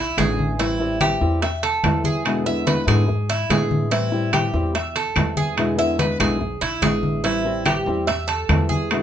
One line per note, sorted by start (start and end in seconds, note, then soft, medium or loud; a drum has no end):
0.00 0.16 B1 medium
0.00 0.18 E4 medium
0.17 1.15 A1 medium
0.17 0.58 D3 soft
0.17 0.59 G#3 soft
0.17 0.59 B3 soft
0.17 0.59 E4 medium
0.17 0.58 G#4 medium
0.17 high conga medium
0.17 high timbale medium
0.17 low timbale medium
0.17 claves medium
0.39 high conga medium
0.59 0.79 E3 medium
0.59 0.79 G3 medium
0.59 0.80 C4 medium
0.59 1.00 E4 medium
0.59 0.79 E4 medium
0.59 high conga soft
0.59 high timbale medium
0.80 1.00 G3 medium
0.80 1.00 C4 medium
0.80 1.00 E4 medium
0.80 high conga soft
1.01 1.21 E3 soft
1.01 1.21 G3 soft
1.01 1.21 C4 soft
1.01 1.20 E4 medium
1.01 1.41 G4 medium
1.01 high conga medium
1.01 high timbale medium
1.01 low timbale medium
1.01 claves medium
1.21 1.80 E2 medium
1.21 1.42 G3 medium
1.21 1.42 C4 medium
1.21 1.42 E4 medium
1.21 high conga soft
1.42 1.63 E5 medium
1.42 muted nylon-string guitar stroke medium
1.42 high conga soft
1.42 high timbale medium
1.63 2.04 A4 medium
1.63 high conga soft
1.63 high timbale medium
1.83 2.82 E2 medium
1.83 2.24 E3 soft
1.83 2.25 G3 soft
1.83 2.25 C4 medium
1.83 2.25 E4 soft
1.83 high conga medium
1.83 high timbale medium
1.83 low timbale medium
1.83 claves medium
2.04 2.45 G#4 medium
2.04 high conga medium
2.25 2.45 B2 medium
2.25 2.46 D3 medium
2.25 2.46 G#3 medium
2.25 2.45 B3 medium
2.25 2.45 E4 medium
2.25 high conga soft
2.25 high timbale medium
2.25 claves medium
2.46 2.65 D3 medium
2.46 2.66 G#3 medium
2.46 2.66 B3 medium
2.46 2.66 E4 medium
2.46 2.66 E5 medium
2.46 high conga soft
2.67 2.87 D3 soft
2.67 2.87 G#3 soft
2.67 2.87 B3 medium
2.67 2.86 E4 medium
2.67 2.87 B4 medium
2.67 high conga loud
2.67 high timbale medium
2.67 low timbale medium
2.87 3.46 G#2 medium
2.87 3.07 D3 medium
2.87 3.07 G#3 medium
2.87 3.07 B3 medium
2.87 3.07 E4 medium
2.87 3.28 G#4 medium
2.87 high conga soft
2.87 low conga medium
2.87 high timbale medium
2.87 claves medium
3.08 muted nylon-string guitar stroke medium
3.08 high conga soft
3.08 low conga medium
3.30 3.50 E4 medium
3.30 high conga soft
3.30 high timbale medium
3.50 4.48 A2 medium
3.50 3.91 D3 soft
3.50 3.91 G#3 soft
3.50 3.91 B3 soft
3.50 3.91 E4 medium
3.50 3.91 G#4 medium
3.50 high conga medium
3.50 high timbale medium
3.50 low timbale medium
3.50 claves medium
3.71 high conga medium
3.91 4.11 E3 medium
3.91 4.12 G3 medium
3.91 4.12 C4 medium
3.91 4.32 E4 medium
3.91 4.11 E4 medium
3.91 high conga soft
3.91 high timbale medium
4.12 4.32 G3 medium
4.12 4.33 C4 medium
4.12 4.32 E4 medium
4.12 high conga soft
4.33 4.53 E3 soft
4.33 4.53 G3 soft
4.33 4.53 C4 medium
4.33 4.53 E4 medium
4.33 4.74 G4 medium
4.33 high conga medium
4.33 high timbale medium
4.33 low timbale medium
4.33 claves medium
4.53 5.12 E2 medium
4.53 4.74 G3 medium
4.53 4.74 C4 medium
4.53 4.74 E4 medium
4.53 high conga soft
4.75 4.95 E5 medium
4.75 muted nylon-string guitar stroke medium
4.75 high conga soft
4.75 high timbale medium
4.96 5.36 A4 medium
4.96 high conga soft
4.96 high timbale medium
5.16 6.14 E2 loud
5.16 5.57 E3 soft
5.16 5.57 G3 soft
5.16 5.57 C4 soft
5.16 5.58 E4 medium
5.16 high conga medium
5.16 high timbale medium
5.16 low timbale medium
5.16 claves medium
5.37 5.77 G#4 medium
5.37 high conga medium
5.57 5.78 B2 medium
5.57 5.78 D3 medium
5.57 5.78 G#3 medium
5.57 5.78 B3 medium
5.57 5.77 E4 medium
5.57 high conga soft
5.57 high timbale medium
5.57 claves medium
5.78 5.98 D3 medium
5.78 5.99 G#3 medium
5.78 5.99 B3 medium
5.78 5.98 E4 medium
5.78 5.99 E5 medium
5.78 high conga soft
5.99 6.19 D3 soft
5.99 6.20 G#3 soft
5.99 6.19 B3 soft
5.99 6.18 E4 soft
5.99 6.20 B4 medium
5.99 high conga medium
5.99 high timbale medium
5.99 low timbale medium
6.20 6.59 B1 medium
6.20 6.39 D3 medium
6.20 6.40 G#3 medium
6.20 6.40 B3 medium
6.20 6.40 E4 medium
6.20 6.61 G#4 medium
6.20 high conga soft
6.20 low conga medium
6.20 high timbale medium
6.20 claves medium
6.40 muted nylon-string guitar stroke medium
6.40 high conga soft
6.40 low conga medium
6.61 6.81 B1 medium
6.61 6.82 E4 medium
6.61 high conga soft
6.61 high timbale medium
6.82 7.80 A1 medium
6.82 7.23 D3 soft
6.82 7.24 G#3 medium
6.82 7.24 B3 medium
6.82 7.24 E4 medium
6.82 7.23 G#4 medium
6.82 high conga medium
6.82 high timbale medium
6.82 low timbale medium
6.82 claves medium
7.03 high conga medium
7.24 7.44 E3 medium
7.24 7.44 G3 medium
7.24 7.45 C4 medium
7.24 7.64 E4 medium
7.24 7.44 E4 medium
7.24 high timbale medium
7.45 7.65 G3 medium
7.45 7.65 C4 medium
7.45 7.65 E4 medium
7.45 high conga soft
7.65 7.86 E3 soft
7.65 7.86 G3 soft
7.65 7.86 C4 soft
7.65 7.86 E4 soft
7.65 8.06 G4 medium
7.65 high conga medium
7.65 high timbale loud
7.65 low timbale medium
7.65 claves medium
7.86 8.45 E2 medium
7.86 8.07 G3 medium
7.86 8.07 C4 medium
7.86 8.07 E4 medium
7.86 high conga soft
8.07 8.28 E5 medium
8.07 muted nylon-string guitar stroke medium
8.07 high conga soft
8.07 high timbale medium
8.28 8.68 A4 medium
8.28 high conga soft
8.28 high timbale medium
8.49 9.03 E2 loud
8.49 8.90 E3 soft
8.49 8.90 G3 soft
8.49 8.91 C4 soft
8.49 8.91 E4 soft
8.49 high conga medium
8.49 high timbale medium
8.49 low timbale medium
8.49 claves medium
8.69 9.03 G#4 medium
8.69 high conga medium
8.91 9.03 B2 medium
8.91 9.03 D3 medium
8.91 9.03 G#3 medium
8.91 9.03 B3 medium
8.91 9.03 E4 medium
8.91 high conga soft
8.91 high timbale medium
8.91 claves medium